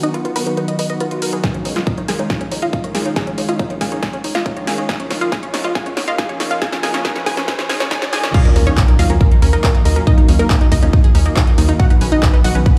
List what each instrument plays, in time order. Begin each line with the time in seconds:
0.03 analog synth pad D#3 F#3 B3 F#4, synth pluck D#4 D#5, synth arpeggio sound D#5, closed hi-hat
0.14 synth arpeggio sound F4, synth pluck B4, closed hi-hat
0.25 synth arpeggio sound F4, synth pluck B4, closed hi-hat
0.36 analog synth bass B1, analog synth pad D#3 F#3 B3 F#4, synth pluck B3 B4, synth arpeggio sound A#4, open hi-hat
0.47 analog synth bass B1, synth arpeggio sound D#4, synth pluck B4, closed hi-hat
0.57 synth arpeggio sound D#4, synth pluck B4, closed hi-hat
0.68 synth arpeggio sound D#5, closed hi-hat
0.79 analog synth bass F#1, synth pluck B4, synth arpeggio sound D#5, open hi-hat
0.90 analog synth pad D#3 F#3 B3 F#4, synth pluck B4, synth arpeggio sound D#5, closed hi-hat
1.00 synth arpeggio sound F4, synth pluck B4, closed hi-hat
1.11 analog synth pad D#3 F#3 B3 F#4, synth arpeggio sound F4, closed hi-hat
1.22 analog synth bass B1, analog synth pad D#3 F#3 B3 F#4, synth arpeggio sound A#4, synth pluck B4, open hi-hat
1.33 synth arpeggio sound G#4, synth pluck B4, closed hi-hat
1.44 analog synth pad D#3 G#3 C#4 F4, synth arpeggio sound D#4, synth pluck G#4 G#5, kick, snare, closed hi-hat, riser
1.54 analog synth pad D#3 G#3 C#4 F4, synth arpeggio sound C#4, synth pluck C#5, closed hi-hat
1.65 analog synth bass C#2, synth arpeggio sound D#4, synth pluck C#5, open hi-hat
1.76 analog synth pad D#3 G#3 C#4 F4, synth pluck F4 F5, synth arpeggio sound D#5, snare, closed hi-hat
1.87 synth arpeggio sound D#4, synth pluck C#5, kick, closed hi-hat
1.97 synth arpeggio sound D#3, synth pluck C#5, closed hi-hat
2.08 analog synth bass C#2, analog synth pad D#3 G#3 C#4 F4, synth pluck G#4 G#5, synth arpeggio sound A#4, snare, open hi-hat
2.19 analog synth bass C#2, synth arpeggio sound D#4, synth pluck C#5, closed hi-hat
2.30 synth arpeggio sound D#4, synth pluck G#4 G#5, kick, snare, closed hi-hat
2.41 synth arpeggio sound C#4, synth pluck C#5, closed hi-hat
2.51 analog synth bass C#2, synth arpeggio sound D#4, synth pluck C#5, open hi-hat
2.62 analog synth pad D#3 G#3 C#4 F4, synth pluck F4 F5, synth arpeggio sound D#5, closed hi-hat
2.73 synth arpeggio sound D#4, synth pluck C#5, kick, closed hi-hat
2.84 synth arpeggio sound D#3, analog synth pad D#3 G#3 C#4 F4, synth pluck C#5, closed hi-hat
2.95 analog synth bass C#2, analog synth pad D#3 G#3 C#4 F4, synth pluck G#4 G#5, synth arpeggio sound A#4, snare, open hi-hat
3.05 synth arpeggio sound D#4, synth pluck C#5, closed hi-hat
3.16 analog synth pad D#3 G#3 C#4 F4, synth arpeggio sound D#4, synth pluck G#4 G#5, kick, snare, closed hi-hat
3.27 analog synth pad D#3 G#3 C#4 F4, synth arpeggio sound C#4, synth pluck C#5, closed hi-hat
3.38 analog synth bass C#2, synth arpeggio sound D#4, synth pluck C#5, open hi-hat
3.49 analog synth pad D#3 G#3 C#4 F4, synth pluck F4 F5, synth arpeggio sound D#5, closed hi-hat
3.59 synth arpeggio sound D#4, synth pluck C#5, kick, closed hi-hat
3.70 synth arpeggio sound D#3, synth pluck C#5, closed hi-hat
3.81 analog synth bass C#2, analog synth pad D#3 G#3 C#4 F4, synth pluck G#4 G#5, synth arpeggio sound A#4, kick, snare, open hi-hat
3.92 analog synth bass C#2, synth arpeggio sound D#4, synth pluck C#5, closed hi-hat
4.03 synth arpeggio sound D#4, synth pluck G#4 G#5, kick, snare, closed hi-hat
4.13 synth arpeggio sound C#4, synth pluck C#5, closed hi-hat
4.24 analog synth bass C#2, synth arpeggio sound D#4, synth pluck C#5, open hi-hat
4.35 analog synth pad D#3 G#3 C#4 F4, synth pluck F4 F5, synth arpeggio sound D#5, snare, closed hi-hat
4.46 synth arpeggio sound D#4, synth pluck C#5, kick, closed hi-hat
4.57 analog synth pad D#3 G#3 C#4 F4, synth arpeggio sound D#3, synth pluck C#5, closed hi-hat
4.67 analog synth bass C#2, analog synth pad D#3 G#3 C#4 F4, synth pluck G#4 G#5, synth arpeggio sound A#4, snare, open hi-hat
4.78 synth arpeggio sound D#4, synth pluck C#5, closed hi-hat
4.89 analog synth pad C#3 F3 A#3 F4, synth arpeggio sound D#4, synth pluck G#4 G#5, kick, snare, closed hi-hat
5.00 analog synth pad C#3 F3 A#3 F4, synth arpeggio sound C#4, synth pluck C#5, closed hi-hat
5.11 analog synth bass A#1, synth arpeggio sound D#4, synth pluck C#5, snare, open hi-hat
5.21 analog synth pad C#3 F3 A#3 F4, synth pluck F4 F5, synth arpeggio sound D#5, closed hi-hat
5.32 synth arpeggio sound D#4, synth pluck G#4 G#5, kick, snare, closed hi-hat
5.43 synth arpeggio sound C#4, synth pluck C#5, closed hi-hat
5.54 analog synth bass A#1, analog synth pad C#3 F3 A#3 F4, synth arpeggio sound D#4, synth pluck C#5, snare, open hi-hat
5.64 analog synth bass A#1, synth pluck F4 F5, synth arpeggio sound D#5, closed hi-hat
5.75 synth arpeggio sound D#4, synth pluck G#4 G#5, kick, snare, closed hi-hat
5.86 synth arpeggio sound C#4, synth pluck C#5, closed hi-hat
5.97 analog synth bass A#1, synth arpeggio sound D#4, synth pluck C#5, snare, open hi-hat
6.08 analog synth pad C#3 F3 A#3 F4, synth pluck F4 F5, synth arpeggio sound D#5, closed hi-hat
6.18 synth arpeggio sound D#4, synth pluck G#4 G#5, kick, snare, closed hi-hat
6.29 analog synth pad C#3 F3 A#3 F4, synth arpeggio sound C#4, synth pluck C#5, closed hi-hat
6.40 analog synth bass A#1, analog synth pad C#3 F3 A#3 F4, synth arpeggio sound D#4, synth pluck C#5, snare, open hi-hat
6.51 synth pluck F4 F5, synth arpeggio sound D#5, closed hi-hat
6.62 analog synth pad C#3 F3 A#3 F4, synth arpeggio sound D#4, synth pluck G#4 G#5, kick, snare, closed hi-hat
6.72 analog synth pad C#3 F3 A#3 F4, synth arpeggio sound C#4, synth pluck C#5, snare, closed hi-hat
6.83 analog synth bass A#1, synth arpeggio sound D#4, synth pluck G#4 G#5, snare, open hi-hat
6.94 analog synth pad C#3 F3 A#3 F4, synth arpeggio sound C#4, synth pluck C#5, snare, closed hi-hat
7.05 synth arpeggio sound D#4, synth pluck G#4 G#5, kick, snare, closed hi-hat
7.16 synth arpeggio sound C#4, synth pluck C#5, snare, closed hi-hat
7.26 analog synth bass A#1, analog synth pad C#3 F3 A#3 F4, synth arpeggio sound D#4, synth pluck G#4 G#5, kick, snare, open hi-hat
7.37 synth arpeggio sound C#4, synth pluck C#5, snare, closed hi-hat
7.48 synth arpeggio sound D#4, synth pluck G#4 G#5, kick, snare, closed hi-hat
7.59 synth arpeggio sound C#4, synth pluck C#5, snare, closed hi-hat
7.70 analog synth bass A#1, synth arpeggio sound D#4, synth pluck G#4 G#5, snare, open hi-hat
7.80 analog synth pad C#3 F3 A#3 F4, synth arpeggio sound C#4, synth pluck C#5, snare, closed hi-hat
7.91 synth arpeggio sound D#4, synth pluck G#4 G#5, kick, snare, closed hi-hat
8.02 analog synth pad C#3 F3 A#3 F4, synth arpeggio sound C#4, synth pluck C#5, snare, closed hi-hat
8.13 analog synth bass A#1, analog synth pad C#3 F3 A#3 F4, synth arpeggio sound D#4, synth pluck G#4 G#5, snare, open hi-hat
8.23 synth arpeggio sound C#4, synth pluck C#5, snare, closed hi-hat
8.34 analog synth pad D#3 F#3 A#3 F4, synth arpeggio sound D#4, synth pluck F4 F5, kick, closed hi-hat, crash, impact
8.45 analog synth pad D#3 F#3 A#3 F4, synth arpeggio sound D#4, synth pluck A#4, closed hi-hat
8.56 analog synth bass D#2, synth arpeggio sound C#4, synth pluck A#4, open hi-hat
8.67 analog synth pad D#3 F#3 A#3 F4, synth pluck C#4 C#5, synth arpeggio sound D#4, closed hi-hat
8.77 synth arpeggio sound F#4, synth pluck A#4, kick, clap, closed hi-hat
8.88 synth arpeggio sound D#4, synth pluck A#4, closed hi-hat
8.99 analog synth bass D#2, analog synth pad D#3 F#3 A#3 F4, synth pluck F4 F5, synth arpeggio sound D#5, open hi-hat
9.10 analog synth bass D#2, synth arpeggio sound C#4, synth pluck A#4, closed hi-hat
9.21 synth pluck A#4, kick, closed hi-hat
9.31 synth arpeggio sound D#4, closed hi-hat
9.42 analog synth bass D#2, synth arpeggio sound C#4, synth pluck A#4, open hi-hat
9.53 analog synth pad D#3 F#3 A#3 F4, synth arpeggio sound D#4, synth pluck A#4, closed hi-hat
9.64 synth arpeggio sound D#4, synth pluck A#4, kick, clap, closed hi-hat
9.75 analog synth pad D#3 F#3 A#3 F4, synth arpeggio sound D#4, closed hi-hat
9.85 analog synth bass D#2, analog synth pad D#3 F#3 A#3 F4, synth pluck A#4, synth arpeggio sound D#5, open hi-hat
9.96 synth arpeggio sound C#4, synth pluck A#4, closed hi-hat
10.07 analog synth pad D#3 F#3 A#3 F4, synth arpeggio sound D#4, synth pluck D#4 D#5, kick, closed hi-hat
10.18 analog synth pad D#3 F#3 A#3 F4, synth pluck D#4, synth arpeggio sound D#4, closed hi-hat
10.28 analog synth bass D#2, synth arpeggio sound C#4, synth pluck D#4, open hi-hat
10.39 analog synth pad D#3 F#3 A#3 F4, synth pluck A#3 A#4, synth arpeggio sound D#4, closed hi-hat
10.50 synth pluck D#4, synth arpeggio sound D#4, kick, clap, closed hi-hat
10.61 synth arpeggio sound D#4, synth pluck D#4, closed hi-hat
10.72 analog synth bass D#2, analog synth pad D#3 F#3 A#3 F4, synth pluck D#4 D#5, synth arpeggio sound D#5, kick, open hi-hat
10.82 analog synth bass D#2, synth arpeggio sound C#4, synth pluck D#4, closed hi-hat
10.93 synth pluck D#4, synth arpeggio sound D#4, kick, closed hi-hat
11.04 synth arpeggio sound G#4, closed hi-hat
11.15 analog synth bass D#2, synth arpeggio sound C#4, synth pluck D#4, open hi-hat
11.26 analog synth pad D#3 F#3 A#3 F4, synth arpeggio sound A#3, synth pluck D#4, closed hi-hat
11.36 synth pluck D#4, synth arpeggio sound F#4, kick, clap, closed hi-hat
11.47 analog synth pad D#3 F#3 A#3 F4, synth arpeggio sound D#4, closed hi-hat
11.58 analog synth bass D#2, synth arpeggio sound D#3, analog synth pad D#3 F#3 A#3 F4, synth pluck D#4, open hi-hat
11.69 synth arpeggio sound D#4, synth pluck D#4, closed hi-hat
11.79 analog synth pad D#3 F#3 B3 F#4, synth arpeggio sound D#4, synth pluck F#4 F#5, kick, closed hi-hat
11.90 analog synth pad D#3 F#3 B3 F#4, synth arpeggio sound D#4, synth pluck B4, closed hi-hat
12.01 analog synth bass B1, synth arpeggio sound C#4, synth pluck B4, open hi-hat
12.12 analog synth pad D#3 F#3 B3 F#4, synth arpeggio sound D#4, synth pluck D#4 D#5, closed hi-hat
12.23 synth arpeggio sound F#4, synth pluck B4, kick, clap, closed hi-hat
12.33 synth arpeggio sound D#4, synth pluck B4, closed hi-hat
12.44 analog synth bass B1, analog synth pad D#3 F#3 B3 F#4, synth pluck F#4 F#5, synth arpeggio sound D#5, open hi-hat
12.55 analog synth bass B1, synth arpeggio sound C#4, synth pluck B4, closed hi-hat
12.66 synth pluck B4, kick, closed hi-hat